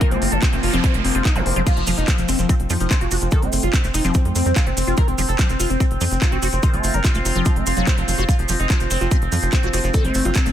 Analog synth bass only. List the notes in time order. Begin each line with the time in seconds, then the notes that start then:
0.11 F#1
0.22 F#1
0.32 F#1
0.53 F1
0.63 F1
0.73 F1
0.94 F1
1.05 F1
1.15 F1
1.36 F1
1.46 F1
1.56 F1
1.77 F1
1.87 F1
1.98 F1
2.18 F1
2.29 F1
2.39 F1
2.60 F1
2.70 F2
2.80 F1
3.01 F1
3.11 F1
3.22 F1
3.42 F#1
3.53 F#1
3.63 F#1
3.84 F1
3.94 F1
4.05 F1
4.25 F2
4.36 F2
4.46 F2
4.67 F1
4.77 F1
4.87 F1
5.08 F1
5.18 F1
5.29 F1
5.49 F1
5.60 F1
5.70 F1
5.91 F1
6.01 F2
6.11 F1
6.32 F1
6.42 F1
6.53 F1
6.73 F#1
6.84 F#1
6.94 F#1
7.15 F1
7.25 F1
7.35 F1
7.56 F1
7.67 F1
7.77 F1
7.98 F1
8.08 F1
8.18 F1
8.39 F1
8.49 F1
8.60 F1
8.80 F1
8.91 F1
9.01 F1
9.22 F1
9.32 F2
9.42 F1
9.63 F1
9.73 F1
9.84 F1
10.04 F#1
10.15 F#1
10.25 F#1
10.46 F1